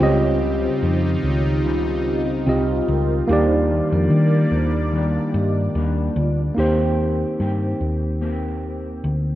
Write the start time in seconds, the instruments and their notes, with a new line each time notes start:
Already playing: analog synth pad C4 G4
0.00 picked electric bass C#2, clean electric guitar C#3 G3 C4, analog synth pad D#3 D#4 F4, tine electric piano C4 F4 G4 D#5, vibraphone F4 C#5
0.05 clean electric guitar F4
0.64 vibraphone D#4 C5
0.83 picked electric bass F2
1.23 picked electric bass C#2, vibraphone F4 C#5
1.65 clean electric guitar C#3 G3 C4 F4
2.07 vibraphone G4 D#5
2.46 picked electric bass C2, clean electric guitar G3 C4 F4, tine electric piano C4 F4 G4 D#5
2.88 picked electric bass C#2, vibraphone A#4 G5
3.28 picked electric bass D#2, clean electric guitar D#3 G3 A#3 D4, analog synth pad G3 A#3 D5, tine electric piano A#3 D#4 G4, vibraphone D#4 C5
3.33 tine electric piano D5
3.92 picked electric bass F2, vibraphone D4 A#4
4.10 picked electric bass D#3
4.51 picked electric bass D#2, clean electric guitar G3 A#3 D4, vibraphone D#4 C5
4.92 clean electric guitar D#3 G3 A#3 D4
5.34 picked electric bass G2, vibraphone G4 D#5
5.75 picked electric bass D#2, clean electric guitar G3 A#3 D4
6.16 picked electric bass D2, vibraphone F4 D5
6.55 picked electric bass D#2, clean electric guitar D#3 A#3 C4, tine electric piano A#3 D#4 G4
6.59 clean electric guitar G4, tine electric piano C5
7.38 picked electric bass G2, clean electric guitar D#3 A#3 C4 G4
7.81 picked electric bass D#2
8.21 clean electric guitar A#3 C4 G4
9.04 picked electric bass D2